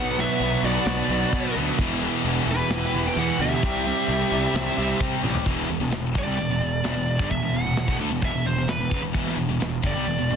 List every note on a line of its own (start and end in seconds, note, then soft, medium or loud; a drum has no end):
0.00 0.24 B1 medium
0.00 0.17 B2 loud
0.00 0.18 F#3 loud
0.00 0.20 B3 loud
0.00 3.60 B3 medium
0.00 3.60 E4 medium
0.00 0.15 B4 medium
0.00 1.77 B4 medium
0.00 1.78 D5 loud
0.00 0.21 F#5 loud
0.18 0.40 B2 medium
0.18 0.41 F#3 medium
0.18 0.42 B3 loud
0.18 0.61 B4 medium
0.18 0.65 E5 loud
0.18 snare soft
0.18 crash medium
0.40 0.55 B1 loud
0.40 0.63 B2 medium
0.40 0.64 F#3 medium
0.40 0.65 B3 medium
0.40 crash medium
0.63 0.77 B1 medium
0.63 0.85 B2 loud
0.63 0.86 F#3 loud
0.63 0.87 B3 loud
0.63 1.52 F#4 medium
0.63 1.53 D5 medium
0.63 crash medium
0.86 1.00 B1 loud
0.86 1.09 B2 medium
0.86 1.10 F#3 medium
0.86 1.10 B3 medium
0.86 snare loud
0.86 crash medium
1.08 1.23 B1 medium
1.08 1.31 B2 medium
1.08 1.32 F#3 medium
1.08 1.33 B3 medium
1.08 crash medium
1.33 1.47 B2 loud
1.33 1.55 B2 loud
1.33 1.55 F#3 loud
1.33 1.56 B3 loud
1.33 kick medium
1.33 crash medium
1.55 1.70 D2 medium
1.55 1.77 B2 medium
1.55 1.78 F#3 medium
1.55 1.78 B3 loud
1.55 crash medium
1.78 2.07 E1 loud
1.78 2.01 E2 loud
1.78 2.01 B2 loud
1.78 3.60 E3 medium
1.78 2.03 E3 loud
1.78 3.61 G4 medium
1.78 kick loud
1.78 crash medium
2.01 2.24 E2 loud
2.01 2.25 B2 medium
2.01 2.27 E3 loud
2.01 crash medium
2.25 2.39 E1 loud
2.25 2.47 E2 medium
2.25 2.47 B2 medium
2.25 2.49 E3 loud
2.25 crash medium
2.47 2.61 E1 medium
2.47 2.70 E2 loud
2.47 2.71 B2 loud
2.47 2.72 E3 loud
2.47 crash medium
2.51 3.04 E4 medium
2.51 3.09 B4 loud
2.70 2.84 E1 medium
2.70 2.94 E2 medium
2.70 2.94 B2 medium
2.70 2.95 E3 medium
2.70 snare loud
2.70 crash medium
2.93 3.08 E1 medium
2.93 3.16 E2 medium
2.93 3.16 B2 medium
2.93 3.17 E3 medium
2.93 crash medium
3.07 3.18 B4 medium
3.07 3.19 G5 loud
3.16 3.31 E2 loud
3.16 3.38 E2 loud
3.16 3.40 B2 loud
3.16 3.41 E3 loud
3.16 3.41 B4 medium
3.16 3.41 F#5 loud
3.16 crash loud
3.39 3.53 D2 medium
3.39 3.61 E2 loud
3.39 3.62 B2 medium
3.39 3.63 E3 loud
3.39 4.97 G4 medium
3.39 4.97 E5 loud
3.39 crash medium
3.62 3.91 C2 loud
3.62 3.85 C3 loud
3.62 5.45 C3 medium
3.62 3.85 G3 loud
3.62 5.45 G3 medium
3.62 3.86 C4 loud
3.62 5.46 D4 medium
3.62 5.45 E4 loud
3.62 kick loud
3.62 crash medium
3.86 4.07 C3 medium
3.86 4.08 G3 loud
3.86 4.09 C4 loud
3.86 crash medium
4.08 4.22 C2 medium
4.08 4.30 C3 medium
4.08 4.30 G3 medium
4.08 4.31 C4 medium
4.08 crash medium
4.31 4.46 C2 medium
4.31 4.52 C3 loud
4.31 4.54 G3 loud
4.31 4.54 C4 loud
4.31 crash medium
4.54 4.68 C2 loud
4.54 4.75 C3 medium
4.54 4.76 G3 medium
4.54 4.77 C4 medium
4.54 snare loud
4.54 crash medium
4.76 4.92 C2 medium
4.76 4.98 C3 medium
4.76 4.99 G3 medium
4.76 4.99 C4 medium
4.76 crash medium
4.99 5.21 C3 loud
4.99 5.14 C3 medium
4.99 5.21 G3 loud
4.99 5.22 C4 loud
4.99 kick medium
4.99 crash medium
5.22 5.37 A1 medium
5.22 5.44 C3 medium
5.22 5.45 G3 medium
5.22 5.45 C4 loud
5.22 high tom medium
5.35 floor tom medium
5.45 5.68 E1 medium
5.45 5.67 E2 loud
5.45 5.68 B2 loud
5.45 5.69 E3 loud
5.45 kick loud
5.45 open hi-hat medium
5.69 5.80 E1 medium
5.69 5.79 E2 medium
5.69 5.79 B2 medium
5.69 open hi-hat medium
5.80 5.91 E1 medium
5.80 5.90 E2 medium
5.80 5.90 B2 medium
5.91 6.13 E1 medium
5.91 6.10 E2 medium
5.91 6.10 B2 medium
5.91 snare loud
5.91 open hi-hat medium
6.15 6.26 G1 medium
6.15 6.26 G2 medium
6.15 6.26 D3 loud
6.15 7.30 D5 medium
6.15 kick medium
6.15 open hi-hat soft
6.26 6.37 C2 medium
6.26 6.38 C3 medium
6.26 6.38 G3 medium
6.38 6.49 E1 medium
6.38 6.49 E2 soft
6.38 6.50 B2 medium
6.38 open hi-hat medium
6.50 6.60 E1 medium
6.50 6.60 E2 medium
6.50 6.61 B2 medium
6.61 6.82 E1 medium
6.61 6.80 E2 medium
6.61 6.80 B2 medium
6.61 open hi-hat medium
6.84 6.94 E1 medium
6.84 6.94 E2 medium
6.84 6.94 B2 medium
6.84 snare loud
6.84 open hi-hat medium
6.95 7.17 E1 medium
6.95 7.14 E2 medium
6.95 7.14 B2 medium
7.08 open hi-hat medium
7.19 7.30 G1 medium
7.19 7.30 G2 medium
7.19 7.30 D3 loud
7.19 kick loud
7.31 7.41 E1 medium
7.31 7.42 E2 medium
7.31 7.43 B2 medium
7.31 7.54 E5 loud
7.31 kick medium
7.31 open hi-hat medium
7.41 7.52 E1 medium
7.41 7.53 E2 medium
7.41 7.53 B2 medium
7.53 7.64 E1 medium
7.53 7.65 E2 medium
7.53 7.65 B2 medium
7.53 7.96 F#5 medium
7.53 open hi-hat medium
7.65 7.75 E1 medium
7.65 7.76 E2 medium
7.65 7.76 B2 medium
7.76 7.87 E1 medium
7.76 7.87 E2 medium
7.76 7.87 B2 medium
7.76 snare loud
7.76 open hi-hat medium
7.88 7.98 E1 medium
7.88 7.99 E2 medium
7.88 7.99 B2 loud
7.88 kick loud
7.99 8.09 D2 medium
7.99 8.11 D3 loud
7.99 8.11 A3 loud
7.99 open hi-hat soft
8.10 8.21 E1 medium
8.10 8.23 E2 medium
8.10 8.23 B2 medium
8.22 8.32 E1 medium
8.22 8.33 E2 medium
8.22 8.34 B2 medium
8.22 8.45 E5 medium
8.22 kick loud
8.22 open hi-hat medium
8.33 8.44 E1 medium
8.33 8.46 E2 medium
8.33 8.46 B2 medium
8.44 8.55 E1 medium
8.44 8.57 E2 medium
8.44 8.57 B2 medium
8.44 8.69 C5 medium
8.44 open hi-hat medium
8.56 8.67 E1 medium
8.56 8.68 E2 medium
8.56 8.68 B2 medium
8.67 8.78 E1 medium
8.67 8.80 E2 medium
8.67 8.80 B2 medium
8.67 9.01 B4 medium
8.67 snare loud
8.67 open hi-hat medium
8.79 8.90 E1 medium
8.79 8.92 E2 medium
8.79 8.92 B2 medium
8.91 9.02 F#1 medium
8.91 9.02 F#2 medium
8.91 9.03 C#3 loud
8.91 kick medium
8.91 open hi-hat medium
9.03 9.13 E1 medium
9.03 9.12 E2 medium
9.03 9.13 B2 medium
9.13 9.36 E1 medium
9.13 9.35 E2 medium
9.13 9.36 B2 loud
9.13 9.37 E3 loud
9.13 kick medium
9.13 open hi-hat medium
9.27 snare soft
9.37 9.48 E1 medium
9.37 9.48 E2 medium
9.37 9.48 B2 medium
9.37 open hi-hat medium
9.49 9.59 E1 medium
9.49 9.59 E2 medium
9.49 9.59 B2 medium
9.60 9.82 E1 medium
9.60 9.79 E2 medium
9.60 9.79 B2 medium
9.60 snare loud
9.60 open hi-hat medium
9.82 9.94 G1 medium
9.82 9.94 G2 medium
9.82 9.94 D3 loud
9.82 kick medium
9.82 open hi-hat soft
9.87 10.36 D5 medium
9.95 10.06 C2 medium
9.95 10.06 C3 medium
9.95 10.06 G3 loud
10.06 10.17 E1 medium
10.06 10.17 E2 medium
10.06 10.17 B2 medium
10.06 open hi-hat medium
10.18 10.29 E1 medium
10.18 10.29 E2 medium
10.18 10.30 B2 medium
10.30 10.36 E1 medium
10.30 10.36 E2 medium
10.30 10.36 B2 medium
10.30 open hi-hat medium